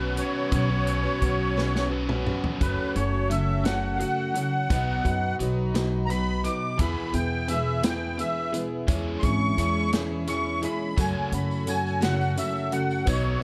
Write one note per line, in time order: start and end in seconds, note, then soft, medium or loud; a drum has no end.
0.00 0.19 B1 medium
0.00 0.50 B2 medium
0.00 0.51 F#3 medium
0.00 0.51 B3 medium
0.00 0.53 C#4 medium
0.00 2.57 C#4 medium
0.00 0.15 C#4 soft
0.00 0.16 F#4 soft
0.00 0.54 F#4 medium
0.00 2.57 F#4 medium
0.00 0.17 B4 soft
0.00 0.19 B4 medium
0.00 2.57 B4 medium
0.00 2.57 C#5 medium
0.16 0.51 F#3 medium
0.16 0.51 C#4 medium
0.16 0.51 F#4 medium
0.16 0.52 B4 medium
0.16 0.51 C#5 medium
0.16 closed hi-hat medium
0.51 1.05 B1 medium
0.51 1.89 B2 medium
0.51 0.69 B2 medium
0.51 1.89 F#3 medium
0.51 0.70 F#3 medium
0.51 1.90 B3 medium
0.51 0.70 C#4 medium
0.51 1.90 C#4 loud
0.51 0.69 F#4 medium
0.51 1.90 F#4 loud
0.51 0.68 B4 medium
0.51 1.88 C#5 medium
0.51 kick loud
0.51 closed hi-hat medium
0.69 1.05 C#4 soft
0.69 1.04 F#4 soft
0.69 1.02 B4 medium
0.87 closed hi-hat medium
1.03 1.20 C#4 soft
1.03 1.21 F#4 soft
1.03 1.21 B4 medium
1.20 2.28 B1 medium
1.20 1.56 F#3 medium
1.20 1.56 C#4 medium
1.20 1.56 F#4 medium
1.20 1.56 B4 medium
1.20 kick medium
1.20 closed hi-hat medium
1.56 1.74 B2 medium
1.56 1.74 F#3 medium
1.56 1.74 C#4 medium
1.56 1.74 F#4 medium
1.56 1.72 B4 loud
1.56 snare medium
1.73 2.09 C#4 soft
1.73 2.09 F#4 soft
1.73 2.07 B4 medium
1.73 snare medium
1.90 2.58 B2 medium
1.90 2.59 F#3 medium
1.90 2.59 B3 medium
1.90 2.60 C#4 medium
1.90 2.60 F#4 medium
2.09 2.26 C#4 medium
2.09 2.27 F#4 medium
2.09 2.26 B4 medium
2.09 mid tom medium
2.27 2.61 F#3 medium
2.27 2.62 C#4 medium
2.27 2.62 F#4 medium
2.27 2.62 B4 medium
2.27 mid tom medium
2.44 floor tom medium
2.60 2.74 F#1 medium
2.60 2.93 F#2 medium
2.60 2.96 F#2 medium
2.60 2.94 C#3 medium
2.60 2.96 C#3 medium
2.60 2.94 F#3 medium
2.60 2.97 F#3 medium
2.60 2.96 A3 medium
2.60 4.68 C#4 medium
2.60 2.96 C#4 medium
2.60 2.92 F#4 medium
2.60 4.68 F#4 medium
2.60 2.95 F#4 medium
2.60 2.93 A4 medium
2.60 4.68 A4 medium
2.60 2.95 B4 medium
2.60 4.68 C#5 medium
2.60 2.93 C#5 medium
2.60 kick loud
2.60 closed hi-hat medium
2.95 4.02 F#1 medium
2.95 3.27 F#2 medium
2.95 3.27 C#3 medium
2.95 3.29 F#3 soft
2.95 3.30 A3 soft
2.95 3.30 C#4 soft
2.95 3.27 F#4 medium
2.95 3.31 F#4 medium
2.95 3.28 A4 medium
2.95 3.29 C#5 medium
2.95 3.28 C#5 medium
2.95 closed hi-hat medium
3.30 3.62 F#2 medium
3.30 3.62 C#3 medium
3.30 3.65 F#3 medium
3.30 3.65 A3 medium
3.30 3.65 C#4 medium
3.30 3.94 F#4 medium
3.30 3.65 F#4 medium
3.30 3.95 A4 medium
3.30 3.95 C#5 medium
3.30 3.64 E5 medium
3.30 closed hi-hat medium
3.64 3.97 F#2 medium
3.64 4.01 F#2 medium
3.64 3.97 C#3 medium
3.64 4.01 C#3 medium
3.64 3.99 F#3 medium
3.64 4.00 A3 medium
3.64 4.01 C#4 medium
3.64 4.01 F#4 medium
3.64 3.99 F#5 medium
3.64 snare loud
3.64 closed hi-hat medium
3.96 4.32 F#2 medium
3.96 4.32 F#4 medium
3.96 4.00 F5 medium
4.00 4.32 C#3 medium
4.00 4.35 F#3 medium
4.00 4.36 A3 medium
4.00 4.36 C#4 medium
4.00 4.35 F#4 medium
4.00 4.32 A4 medium
4.00 4.33 C#5 medium
4.00 5.36 F#5 loud
4.00 closed hi-hat medium
4.34 4.66 F#2 medium
4.34 4.66 C#3 medium
4.34 4.71 C#4 soft
4.34 4.69 F#4 medium
4.34 4.71 F#4 medium
4.34 4.70 A4 medium
4.34 4.71 C#5 medium
4.34 closed hi-hat medium
4.38 4.70 F#3 soft
4.38 4.71 A3 soft
4.70 4.97 B1 medium
4.70 5.03 B2 medium
4.70 5.05 B2 medium
4.70 5.03 F#3 medium
4.70 5.05 F#3 medium
4.70 6.77 B3 medium
4.70 5.03 B3 medium
4.70 5.05 B3 medium
4.70 6.77 D#4 medium
4.70 5.05 D#4 medium
4.70 5.02 F#4 medium
4.70 6.77 F#4 medium
4.70 5.03 F#4 medium
4.70 6.77 B4 medium
4.70 5.02 B4 medium
4.70 5.03 D#5 medium
4.70 kick loud
4.70 closed hi-hat medium
5.05 5.32 F#2 medium
5.05 5.36 B2 medium
5.05 5.36 F#3 medium
5.05 5.40 B3 soft
5.05 5.40 D#4 medium
5.05 5.37 F#4 medium
5.05 5.40 F#4 medium
5.05 5.37 B4 medium
5.05 5.38 D#5 medium
5.05 kick medium
5.05 closed hi-hat medium
5.39 6.47 B1 medium
5.39 5.71 B2 medium
5.39 5.71 F#3 medium
5.39 5.75 F#3 medium
5.39 5.74 B3 medium
5.39 5.74 D#4 medium
5.39 6.04 F#4 medium
5.39 5.73 F#4 medium
5.39 6.04 B4 medium
5.39 6.05 D#5 medium
5.39 closed hi-hat medium
5.75 6.06 B2 medium
5.75 6.11 B2 medium
5.75 6.07 F#3 medium
5.75 6.09 F#3 medium
5.75 6.10 B3 medium
5.75 6.10 D#4 medium
5.75 6.10 F#4 medium
5.75 snare loud
5.75 closed hi-hat medium
6.06 6.41 F#4 medium
6.06 6.42 B4 medium
6.06 6.10 A#5 medium
6.10 6.41 B2 medium
6.10 6.41 F#3 medium
6.10 6.45 F#3 medium
6.10 6.45 B3 medium
6.10 6.45 D#4 medium
6.10 6.44 F#4 medium
6.10 6.42 D#5 medium
6.10 6.44 B5 loud
6.10 closed hi-hat medium
6.43 6.76 B2 medium
6.43 6.76 F#3 medium
6.43 6.80 D#4 medium
6.43 6.79 F#4 medium
6.43 6.80 F#4 soft
6.43 6.77 B4 medium
6.43 6.80 D#5 medium
6.43 6.78 D6 medium
6.43 closed hi-hat medium
6.47 6.80 B3 soft
6.78 7.11 E2 medium
6.78 6.93 E2 medium
6.78 7.12 B2 loud
6.78 7.12 E3 loud
6.78 7.15 E3 medium
6.78 8.86 B3 medium
6.78 7.15 B3 medium
6.78 8.86 E4 medium
6.78 7.14 E4 medium
6.78 7.10 G#4 medium
6.78 8.86 G#4 medium
6.78 7.13 G#4 medium
6.78 7.11 B4 medium
6.78 8.86 B4 medium
6.78 7.11 E5 medium
6.78 7.14 B5 medium
6.78 kick loud
6.78 closed hi-hat loud
7.12 7.45 E2 medium
7.12 8.20 E2 medium
7.12 7.45 B2 medium
7.12 7.50 E4 soft
7.12 7.45 G#4 medium
7.12 7.49 G#4 medium
7.12 7.46 B4 medium
7.12 7.46 E5 medium
7.12 7.48 G5 medium
7.12 closed hi-hat medium
7.17 7.49 B3 soft
7.48 7.80 E2 medium
7.48 7.80 B2 medium
7.48 7.84 E3 medium
7.48 7.83 B3 medium
7.48 7.83 E4 medium
7.48 8.12 G#4 medium
7.48 7.82 G#4 medium
7.48 8.13 B4 medium
7.48 7.83 E5 medium
7.48 8.13 E5 medium
7.48 closed hi-hat medium
7.83 8.15 E2 medium
7.83 8.15 B2 medium
7.83 8.17 E3 medium
7.83 8.18 B3 medium
7.83 8.18 E4 medium
7.83 8.19 G#4 medium
7.83 8.18 G5 loud
7.83 snare loud
7.83 closed hi-hat loud
8.17 8.49 E2 medium
8.17 8.50 B2 medium
8.17 8.53 E3 medium
8.17 8.54 B3 medium
8.17 8.53 E4 medium
8.17 8.50 G#4 medium
8.17 8.52 G#4 medium
8.17 8.51 B4 medium
8.17 8.51 E5 medium
8.17 8.53 E5 loud
8.17 closed hi-hat medium
8.52 8.84 E2 medium
8.52 8.85 B2 medium
8.52 8.88 B3 soft
8.52 8.88 E4 soft
8.52 8.87 G#4 medium
8.52 8.88 G#4 medium
8.52 8.88 B4 medium
8.52 8.89 E5 medium
8.52 closed hi-hat medium
8.87 9.15 E2 medium
8.87 9.21 E3 medium
8.87 9.23 E3 medium
8.87 9.21 G#3 loud
8.87 10.96 C#4 medium
8.87 9.21 C#4 medium
8.87 9.24 C#4 medium
8.87 10.96 E4 medium
8.87 9.23 E4 medium
8.87 10.96 G#4 medium
8.87 9.20 G#4 medium
8.87 9.21 G#4 medium
8.87 10.95 C#5 medium
8.87 9.21 C#5 medium
8.87 9.21 E5 medium
8.87 kick loud
8.87 closed hi-hat loud
9.19 9.55 G#4 medium
9.19 9.58 G#4 medium
9.19 9.23 C6 medium
9.19 closed hi-hat medium
9.23 9.50 G#1 medium
9.23 9.55 E3 medium
9.23 9.55 G#3 medium
9.23 9.58 C#4 soft
9.23 9.58 E4 soft
9.23 9.56 C#5 medium
9.23 9.56 E5 medium
9.23 9.91 C#6 loud
9.23 kick medium
9.57 10.64 E2 medium
9.57 9.93 E3 medium
9.57 9.90 E3 medium
9.57 9.90 G#3 medium
9.57 9.93 C#4 medium
9.57 9.93 E4 medium
9.57 10.22 G#4 medium
9.57 9.92 G#4 medium
9.57 10.22 C#5 medium
9.57 10.23 E5 medium
9.57 closed hi-hat medium
9.93 10.25 E3 medium
9.93 10.27 E3 medium
9.93 10.25 G#3 medium
9.93 10.28 C#4 medium
9.93 10.28 E4 medium
9.93 10.28 G#4 medium
9.93 snare loud
9.93 closed hi-hat medium
10.26 10.59 E3 medium
10.26 10.63 E3 medium
10.26 10.59 G#3 medium
10.26 10.64 C#4 medium
10.26 10.59 G#4 medium
10.26 10.59 C#5 medium
10.26 10.60 E5 medium
10.26 10.62 C#6 loud
10.26 closed hi-hat medium
10.30 10.63 E4 medium
10.30 10.62 G#4 medium
10.62 10.94 E3 medium
10.62 10.94 G#3 medium
10.62 10.98 C#4 soft
10.62 10.99 E4 soft
10.62 10.98 G#4 medium
10.62 10.97 C#5 medium
10.62 10.98 E5 medium
10.62 10.97 B5 medium
10.62 closed hi-hat medium
10.96 11.30 F#2 medium
10.96 11.11 F#2 medium
10.96 11.33 F#2 medium
10.96 11.30 C#3 medium
10.96 11.33 C#3 medium
10.96 11.31 F#3 loud
10.96 11.33 F#3 medium
10.96 11.33 A3 medium
10.96 13.05 C#4 medium
10.96 11.33 C#4 medium
10.96 13.05 F#4 medium
10.96 11.32 F#4 medium
10.96 11.29 A4 medium
10.96 13.05 A4 medium
10.96 11.30 C#5 medium
10.96 13.05 C#5 medium
10.96 11.30 F#5 medium
10.96 11.32 G#5 medium
10.96 kick loud
10.96 closed hi-hat medium
10.96 tambourine medium
11.32 11.64 F#2 medium
11.32 12.39 F#2 medium
11.32 11.64 C#3 medium
11.32 11.66 F#3 soft
11.32 11.67 A3 soft
11.32 11.68 C#4 medium
11.32 11.68 F#4 soft
11.32 11.64 A4 medium
11.32 11.65 C#5 medium
11.32 11.65 F#5 medium
11.32 11.67 B5 medium
11.32 closed hi-hat medium
11.32 tambourine soft
11.51 tambourine soft
11.66 11.99 F#2 medium
11.66 11.99 C#3 medium
11.66 12.01 F#3 medium
11.66 12.01 A3 medium
11.66 12.00 C#4 medium
11.66 12.00 F#4 medium
11.66 12.31 A4 medium
11.66 12.31 C#5 medium
11.66 12.32 F#5 medium
11.66 12.02 G#5 loud
11.66 closed hi-hat medium
11.66 tambourine loud
11.87 tambourine soft
12.01 12.38 F#2 medium
12.01 12.34 F#2 medium
12.01 12.38 C#3 medium
12.01 12.35 C#3 medium
12.01 12.35 F#3 medium
12.01 12.37 A3 medium
12.01 12.37 C#4 medium
12.01 12.37 F#4 medium
12.01 12.37 F#5 loud
12.01 snare loud
12.01 closed hi-hat medium
12.21 tambourine soft
12.36 12.69 F#2 medium
12.36 12.69 C#3 medium
12.36 12.72 F#3 medium
12.36 12.72 A3 medium
12.36 12.72 C#4 medium
12.36 12.71 F#4 medium
12.36 12.69 A4 medium
12.36 12.69 C#5 medium
12.36 12.72 E5 loud
12.36 12.69 F#5 medium
12.36 closed hi-hat medium
12.36 tambourine loud
12.56 tambourine soft
12.70 13.04 F#2 medium
12.70 13.04 C#3 medium
12.70 13.06 F#3 soft
12.70 13.08 A3 soft
12.70 13.07 C#4 soft
12.70 13.07 F#4 medium
12.70 13.06 A4 medium
12.70 13.07 C#5 medium
12.70 13.07 F#5 medium
12.70 13.06 F#5 medium
12.70 closed hi-hat medium
12.91 tambourine soft
13.05 13.34 B1 medium
13.05 13.40 B2 medium
13.05 13.42 B2 medium
13.05 13.40 F#3 medium
13.05 13.42 F#3 medium
13.05 13.40 B3 loud
13.05 13.42 B3 medium
13.05 13.43 B3 medium
13.05 13.43 D#4 medium
13.05 13.41 D#4 medium
13.05 13.38 F#4 medium
13.05 13.38 B4 medium
13.05 13.41 C#5 medium
13.05 13.39 D#5 medium
13.05 kick loud
13.05 closed hi-hat loud
13.05 tambourine loud
13.09 13.40 F#4 medium
13.09 13.43 F#4 medium
13.09 13.43 B4 medium
13.39 13.43 F#4 medium